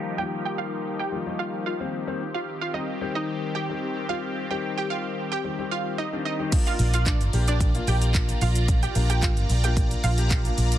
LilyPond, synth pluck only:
\new Staff \with { instrumentName = "Synth pluck" } { \time 4/4 \key bes \mixolydian \tempo 4 = 111 r16 <g' g''>16 r16 <g' g''>16 <f' f''>16 r8 <g' g''>16 r8 <f' f''>8 <f' f''>8. r16 | r16 <f' f''>16 r16 <f' f''>16 <ees' ees''>16 r8 <ees' ees''>16 r8 <g' g''>8 r8 <f' f''>16 r16 | r16 <g' g''>16 r16 <g' g''>16 <f' f''>16 r8 <g' g''>16 r8 <f' f''>8 <ees' ees''>16 r16 <ees' ees''>16 r16 | r16 <f' f''>16 r16 <f' f''>16 <d' d''>16 r8 <d' d''>16 r8 <g' g''>8 r8 <f' f''>16 r16 |
r16 <g' g''>16 r16 <g' g''>16 <f' f''>16 r8 <g' g''>16 r8 <f' f''>8 <f' f''>8. r16 | }